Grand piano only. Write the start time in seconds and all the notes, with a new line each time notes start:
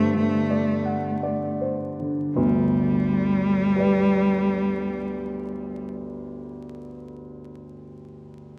Already playing: G2 D3 C5 D5 F#5
0.15 D3
0.51 D5
0.85 F#5
1.23 D5
1.61 C5
2.00 D3
2.36 G1 D2
3.76 G4 B4
3.80 D5